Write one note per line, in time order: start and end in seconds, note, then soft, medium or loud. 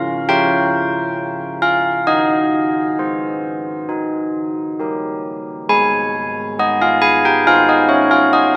0.00 2.03 C#4 medium
0.00 0.28 F4 medium
0.00 0.24 F5 loud
0.29 2.03 F4 medium
0.29 2.03 C#5 medium
0.29 1.57 G5 loud
1.62 2.05 F5 loud
2.07 3.85 D#4 medium
2.07 4.75 D#5 medium
2.99 3.85 G#4 soft
2.99 3.85 C5 soft
3.89 5.65 D#4 medium
4.79 5.66 G4 soft
4.79 5.66 A#4 soft
5.69 8.56 G#3 medium
5.69 6.55 G#5 loud
6.59 7.99 G#4 soft
6.59 6.81 D#5 medium
6.82 7.03 F5 medium
7.02 7.24 G#5 loud
7.25 7.47 G5 medium
7.47 8.56 D#4 soft
7.47 8.56 C5 soft
7.47 7.69 F5 loud
7.69 7.90 D#5 medium
7.89 8.11 C#5 medium
8.11 8.33 F5 medium
8.33 8.55 D#5 medium